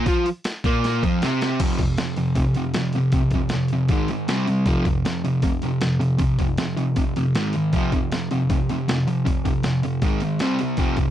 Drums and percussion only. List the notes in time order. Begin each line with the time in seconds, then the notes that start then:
0.06 kick, open hi-hat
0.26 open hi-hat
0.44 snare, open hi-hat
0.64 kick, open hi-hat
0.84 snare, open hi-hat
1.03 kick, open hi-hat
1.22 snare, open hi-hat
1.41 snare, open hi-hat
1.60 kick, open hi-hat, crash
1.79 kick, open hi-hat
1.98 snare, open hi-hat
2.16 open hi-hat
2.35 kick, open hi-hat
2.54 open hi-hat
2.74 snare, open hi-hat
2.93 open hi-hat
3.12 kick, open hi-hat
3.31 kick, open hi-hat
3.49 snare, open hi-hat
3.68 open hi-hat
3.89 kick, open hi-hat
4.08 open hi-hat
4.28 snare, open hi-hat
4.47 open hi-hat
4.66 kick, open hi-hat
4.85 kick, open hi-hat
5.05 snare, open hi-hat
5.25 open hi-hat
5.42 kick, open hi-hat
5.62 open hi-hat
5.81 snare, open hi-hat
6.01 open hi-hat
6.18 kick, open hi-hat
6.39 kick, open hi-hat
6.57 snare, open hi-hat
6.77 open hi-hat
6.96 kick, open hi-hat
7.16 open hi-hat
7.35 snare, open hi-hat
7.53 open hi-hat
7.73 kick, open hi-hat
7.92 kick, open hi-hat
8.12 snare, open hi-hat
8.31 open hi-hat
8.50 kick, open hi-hat
8.69 open hi-hat
8.88 snare, open hi-hat
9.08 open hi-hat
9.26 kick, open hi-hat
9.45 kick, open hi-hat
9.63 snare, open hi-hat
9.83 open hi-hat
10.02 kick, open hi-hat
10.20 open hi-hat
10.39 snare, open hi-hat
10.59 open hi-hat
10.77 kick, open hi-hat
10.97 kick, open hi-hat